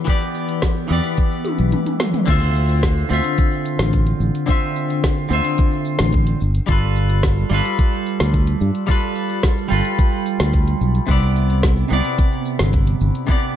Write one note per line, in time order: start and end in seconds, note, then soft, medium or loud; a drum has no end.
0.05 0.86 E3 medium
0.05 0.87 B3 medium
0.05 0.87 G4 medium
0.05 kick loud
0.05 closed hi-hat medium
0.05 shaker soft
0.10 0.88 D5 loud
0.21 shaker soft
0.35 closed hi-hat soft
0.35 shaker medium
0.49 closed hi-hat soft
0.49 shaker soft
0.62 kick loud
0.62 snare medium
0.62 closed hi-hat medium
0.62 shaker soft
0.76 shaker soft
0.88 0.99 E2 medium
0.88 2.24 E3 medium
0.88 2.24 B3 medium
0.88 2.25 G4 medium
0.88 shaker medium
0.93 2.26 D5 loud
1.04 closed hi-hat soft
1.04 shaker soft
1.17 kick loud
1.17 closed hi-hat medium
1.17 shaker soft
1.31 shaker soft
1.45 closed hi-hat soft
1.45 high tom medium
1.45 shaker medium
1.59 1.73 B1 medium
1.59 closed hi-hat soft
1.59 shaker soft
1.72 closed hi-hat medium
1.72 mid tom medium
1.72 shaker soft
1.86 closed hi-hat medium
1.86 mid tom medium
1.86 shaker soft
2.00 snare medium
2.00 mid tom medium
2.00 shaker medium
2.14 closed hi-hat soft
2.14 mid tom medium
2.14 shaker soft
2.26 3.03 D2 medium
2.26 3.06 D3 medium
2.26 3.07 C4 medium
2.26 3.08 F4 medium
2.26 kick loud
2.26 closed hi-hat medium
2.26 crash medium
2.26 shaker soft
2.30 3.09 E5 loud
2.55 closed hi-hat soft
2.55 shaker medium
2.69 closed hi-hat soft
2.69 shaker soft
2.83 kick loud
2.83 snare medium
2.83 closed hi-hat medium
2.83 shaker soft
2.97 shaker soft
3.09 3.20 D2 loud
3.09 4.44 D3 medium
3.09 4.45 C4 medium
3.09 4.46 F4 medium
3.09 shaker medium
3.14 4.46 E5 loud
3.24 closed hi-hat soft
3.24 shaker soft
3.38 kick loud
3.38 closed hi-hat medium
3.38 shaker soft
3.52 shaker soft
3.66 closed hi-hat soft
3.66 shaker medium
3.79 4.13 A1 medium
3.79 snare medium
3.79 closed hi-hat soft
3.79 shaker soft
3.93 kick loud
3.93 closed hi-hat soft
3.93 shaker soft
4.07 closed hi-hat medium
4.20 4.29 A1 medium
4.20 shaker medium
4.35 closed hi-hat soft
4.35 shaker soft
4.46 5.27 D3 medium
4.46 5.27 C4 medium
4.46 5.28 F4 medium
4.46 kick loud
4.46 closed hi-hat medium
4.46 shaker soft
4.50 5.29 E5 loud
4.76 closed hi-hat soft
4.76 shaker medium
4.90 closed hi-hat soft
4.90 shaker soft
5.04 kick loud
5.04 snare medium
5.04 closed hi-hat medium
5.04 shaker soft
5.17 shaker soft
5.29 5.40 D2 medium
5.29 6.38 D3 medium
5.29 6.39 C4 medium
5.29 6.40 F4 medium
5.29 shaker medium
5.33 6.41 E5 loud
5.45 closed hi-hat soft
5.45 shaker soft
5.58 kick loud
5.58 closed hi-hat medium
5.58 shaker soft
5.72 shaker soft
5.85 closed hi-hat soft
5.85 shaker medium
5.99 6.33 A1 medium
5.99 snare medium
5.99 closed hi-hat soft
5.99 shaker soft
6.13 kick loud
6.13 closed hi-hat medium
6.13 shaker soft
6.27 closed hi-hat medium
6.40 6.59 G1 medium
6.40 shaker medium
6.55 closed hi-hat soft
6.55 shaker soft
6.67 7.43 G1 loud
6.67 7.47 G3 medium
6.67 7.48 F4 medium
6.67 7.49 A4 medium
6.67 kick loud
6.67 closed hi-hat medium
6.67 shaker soft
6.72 7.50 B4 loud
6.96 closed hi-hat soft
6.96 shaker medium
7.09 closed hi-hat soft
7.09 shaker soft
7.23 kick loud
7.23 snare medium
7.23 closed hi-hat medium
7.23 shaker soft
7.38 shaker soft
7.50 7.60 G1 loud
7.50 8.85 G3 medium
7.50 8.86 F4 medium
7.50 8.86 A4 medium
7.50 shaker medium
7.54 8.87 B4 loud
7.65 closed hi-hat soft
7.65 shaker soft
7.79 kick loud
7.79 closed hi-hat medium
7.79 shaker soft
7.93 shaker soft
8.06 closed hi-hat soft
8.06 shaker medium
8.20 8.53 D2 medium
8.20 snare medium
8.20 closed hi-hat soft
8.20 shaker soft
8.34 kick loud
8.34 closed hi-hat soft
8.34 shaker soft
8.47 closed hi-hat medium
8.61 8.70 G2 medium
8.61 shaker medium
8.75 closed hi-hat soft
8.75 shaker soft
8.87 9.67 G3 medium
8.87 9.68 F4 medium
8.87 9.69 A4 medium
8.87 kick loud
8.87 closed hi-hat medium
8.87 shaker soft
8.91 9.69 B4 loud
9.16 closed hi-hat soft
9.16 shaker medium
9.30 closed hi-hat soft
9.30 shaker soft
9.43 kick loud
9.43 snare medium
9.43 closed hi-hat soft
9.43 shaker soft
9.57 shaker soft
9.69 9.80 G1 medium
9.69 11.04 G3 medium
9.69 11.05 F4 medium
9.69 11.06 A4 medium
9.69 shaker medium
9.73 11.07 B4 loud
9.85 closed hi-hat soft
9.85 shaker soft
9.99 kick loud
9.99 closed hi-hat medium
9.99 shaker soft
10.12 shaker soft
10.26 closed hi-hat soft
10.26 shaker medium
10.40 10.73 D2 medium
10.40 snare medium
10.40 closed hi-hat soft
10.40 shaker soft
10.53 kick loud
10.53 closed hi-hat soft
10.53 shaker soft
10.68 closed hi-hat soft
10.81 10.99 B1 medium
10.81 shaker medium
10.95 closed hi-hat soft
10.95 shaker soft
11.07 11.83 C2 loud
11.07 11.87 C3 medium
11.07 11.88 B3 medium
11.07 11.89 E4 medium
11.07 kick loud
11.07 closed hi-hat medium
11.07 shaker soft
11.11 11.89 D5 loud
11.36 closed hi-hat soft
11.36 shaker medium
11.50 closed hi-hat soft
11.50 shaker soft
11.63 kick loud
11.63 snare medium
11.63 closed hi-hat medium
11.63 shaker soft
11.77 shaker soft
11.89 12.00 C2 medium
11.89 13.24 C3 medium
11.89 13.25 B3 medium
11.89 13.26 E4 medium
11.89 shaker medium
11.93 13.27 D5 loud
12.05 closed hi-hat soft
12.05 shaker soft
12.18 kick loud
12.18 closed hi-hat medium
12.18 shaker soft
12.32 shaker soft
12.45 closed hi-hat soft
12.45 shaker medium
12.59 12.93 G1 medium
12.59 snare medium
12.59 closed hi-hat soft
12.59 shaker soft
12.73 kick loud
12.73 closed hi-hat soft
12.73 shaker soft
12.87 closed hi-hat soft
13.00 13.10 G1 medium
13.00 shaker medium
13.15 closed hi-hat soft
13.15 shaker soft
13.27 13.56 C3 medium
13.27 13.56 B3 medium
13.27 13.56 E4 medium
13.27 kick loud
13.27 closed hi-hat medium
13.27 shaker soft
13.31 13.56 D5 loud